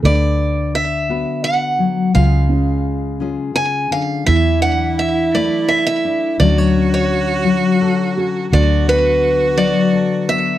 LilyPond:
<<
  \new Staff \with { instrumentName = "Steel-string acoustic guitar" } { \time 3/4 \key e \mixolydian \tempo 4 = 85 d''4 e''4 fis''4 | eis''2 gis''8 eis''8 | e''8 fis''8 e''8 d''8 e''16 e''8. | d''16 cis''8 cis''4.~ cis''16 r8 |
d''8 b'4 d''4 e''8 | }
  \new Staff \with { instrumentName = "Cello" } { \time 3/4 \key e \mixolydian r2. | r2. | e'2. | fis'2. |
fis'2. | }
  \new Staff \with { instrumentName = "Felt piano" } { \time 3/4 \key e \mixolydian a'4 r2 | r8 cis'4 r4. | e'4 r2 | r2 r8 fis'8~ |
fis'8 r2 r8 | }
  \new Staff \with { instrumentName = "Nylon-string guitar" } { \time 3/4 \key e \mixolydian << { b'4. <b fis' b'>4. | <gis cis' eis' gis'>4. <cis' eis' gis'>4. | r8 d'4 b'8 b'8 d'8 | <fis cis' fis' a'>8 cis'4 fis'8 a'8 cis'8 |
r8 b4 fis'8 a'8 b8 | } \\ { d2~ d8 fis8 | cis2 cis8 d8 | e4. a4. | d4. fis4. |
d4. fis4. | } >> }
  \new Staff \with { instrumentName = "Fingered electric bass" } { \clef bass \time 3/4 \key e \mixolydian d,2 r4 | cis,2 r4 | e,2 r4 | d,2 r4 |
d,2 r4 | }
>>